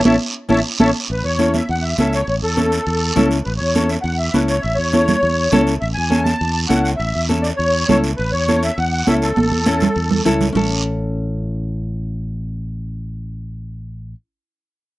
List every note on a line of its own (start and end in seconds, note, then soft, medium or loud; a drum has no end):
0.05 0.17 A1 medium
0.05 0.15 C#4 medium
0.05 0.15 E4 medium
0.05 0.15 A4 medium
0.05 0.15 C#5 medium
0.05 0.16 E5 medium
0.05 0.16 A5 medium
0.05 high conga loud
0.05 long guiro medium
0.49 0.61 A1 medium
0.49 0.59 C#4 medium
0.49 0.59 E4 medium
0.49 0.59 A4 medium
0.49 0.60 C#5 medium
0.49 0.60 E5 medium
0.49 0.60 A5 loud
0.49 high conga medium
0.49 long guiro loud
0.79 0.91 A1 medium
0.79 0.89 C#4 medium
0.79 0.89 E4 loud
0.79 0.90 A4 medium
0.79 0.90 C#5 medium
0.79 0.90 E5 medium
0.79 0.90 A5 medium
0.79 high conga medium
0.79 long guiro loud
1.09 1.22 A1 loud
1.09 1.25 B4 medium
1.09 long guiro medium
1.24 1.60 E2 medium
1.24 1.55 C#5 medium
1.39 1.60 C#4 medium
1.39 1.60 E4 medium
1.39 1.60 A4 medium
1.39 high conga medium
1.39 short guiro medium
1.54 1.68 E5 medium
1.54 high conga medium
1.54 short guiro medium
1.69 1.93 E2 medium
1.69 1.84 F#5 medium
1.69 long guiro medium
1.82 1.96 E5 medium
1.98 2.22 C#2 medium
1.98 2.20 C#4 medium
1.98 2.20 E4 medium
1.98 2.20 A4 medium
1.98 2.13 E5 medium
1.98 high conga medium
1.98 short guiro medium
2.13 2.27 C#5 medium
2.13 short guiro medium
2.27 2.40 A1 loud
2.27 2.35 C#5 medium
2.27 long guiro medium
2.43 2.78 E2 medium
2.43 3.28 A4 medium
2.56 2.78 C#4 medium
2.56 2.78 E4 medium
2.56 2.78 A4 medium
2.56 high conga medium
2.56 short guiro medium
2.72 short guiro medium
2.87 3.11 E2 loud
2.87 long guiro medium
3.16 3.40 C#2 loud
3.16 3.37 C#4 medium
3.16 3.37 E4 medium
3.16 3.37 A4 loud
3.16 high conga medium
3.16 low conga medium
3.16 short guiro medium
3.31 short guiro medium
3.45 3.58 A1 loud
3.45 3.52 B4 medium
3.45 long guiro medium
3.57 3.96 E2 medium
3.57 3.90 C#5 medium
3.75 3.96 C#4 medium
3.75 3.96 E4 medium
3.75 3.96 A4 medium
3.75 high conga medium
3.75 short guiro medium
3.88 3.95 E5 medium
3.88 short guiro medium
4.02 4.28 E2 medium
4.02 4.17 F#5 loud
4.02 long guiro medium
4.19 4.35 E5 loud
4.33 4.58 C#2 medium
4.33 4.55 C#4 medium
4.33 4.55 E4 medium
4.33 4.56 A4 medium
4.33 4.40 B4 medium
4.33 high conga medium
4.33 short guiro medium
4.48 4.62 C#5 medium
4.48 short guiro medium
4.62 4.76 A1 loud
4.62 4.77 E5 loud
4.62 long guiro medium
4.75 5.14 E2 medium
4.75 5.62 C#5 loud
4.93 5.14 C#4 medium
4.93 5.14 E4 medium
4.93 5.14 A4 medium
4.93 high conga medium
4.93 short guiro medium
5.08 high conga medium
5.08 low conga medium
5.08 short guiro medium
5.23 5.47 E2 loud
5.23 long guiro medium
5.52 5.76 C#2 medium
5.52 5.73 C#4 medium
5.52 5.73 E4 medium
5.52 5.73 A4 loud
5.52 high conga medium
5.52 low conga medium
5.52 short guiro medium
5.67 short guiro medium
5.80 5.94 A1 medium
5.80 5.88 E5 loud
5.80 long guiro medium
5.94 6.33 E2 medium
5.94 6.23 G#5 loud
6.10 6.32 C#4 medium
6.10 6.32 E4 medium
6.10 6.32 A4 medium
6.10 high conga medium
6.10 short guiro medium
6.23 6.51 A5 loud
6.23 high conga medium
6.23 short guiro medium
6.41 6.65 E2 loud
6.41 long guiro medium
6.53 6.60 A5 loud
6.68 6.94 C#2 medium
6.68 6.91 C#4 medium
6.68 6.91 E4 medium
6.68 6.91 A4 medium
6.68 6.81 F#5 loud
6.68 high conga medium
6.68 short guiro medium
6.82 6.90 F#5 loud
6.82 short guiro medium
6.97 7.12 A1 loud
6.97 7.26 E5 loud
6.97 long guiro medium
7.15 7.51 E2 medium
7.29 7.50 C#4 medium
7.29 7.50 E4 medium
7.29 7.50 A4 medium
7.29 high conga medium
7.29 short guiro medium
7.42 7.49 D5 medium
7.42 short guiro medium
7.56 7.83 E2 medium
7.56 7.99 C#5 loud
7.56 long guiro medium
7.88 8.13 C#2 medium
7.88 8.10 C#4 medium
7.88 8.10 E4 medium
7.88 8.10 A4 medium
7.88 high conga medium
7.88 low conga medium
7.88 short guiro medium
8.04 short guiro medium
8.17 8.31 A1 loud
8.17 8.32 B4 medium
8.17 long guiro medium
8.32 8.69 E2 medium
8.32 8.63 C#5 medium
8.48 8.69 C#4 medium
8.48 8.69 E4 medium
8.48 8.69 A4 medium
8.48 high conga medium
8.48 short guiro medium
8.63 8.79 E5 medium
8.63 short guiro medium
8.78 9.02 E2 loud
8.78 8.91 F#5 loud
8.78 long guiro medium
8.92 9.06 F#5 loud
9.07 9.32 C#2 medium
9.07 9.28 C#4 medium
9.07 9.28 E4 medium
9.07 9.28 A4 medium
9.07 9.15 E5 medium
9.07 high conga medium
9.07 short guiro medium
9.22 10.22 A4 medium
9.22 short guiro medium
9.36 9.49 A1 loud
9.36 high conga loud
9.36 long guiro medium
9.52 9.87 E2 medium
9.52 high conga medium
9.66 9.87 C#4 medium
9.66 9.87 E4 medium
9.66 9.88 A4 medium
9.66 high conga medium
9.66 short guiro medium
9.80 low conga loud
9.80 short guiro medium
9.96 10.20 E2 loud
9.96 long guiro medium
10.11 low conga medium
10.25 10.50 C#2 medium
10.25 10.46 C#4 medium
10.25 10.47 E4 medium
10.25 10.47 A4 loud
10.25 low conga medium
10.25 short guiro medium
10.41 low conga medium
10.41 short guiro medium
10.53 14.13 A1 loud
10.53 14.11 C#4 medium
10.53 14.13 E4 medium
10.53 low conga loud
10.53 long guiro loud
10.57 14.15 A4 medium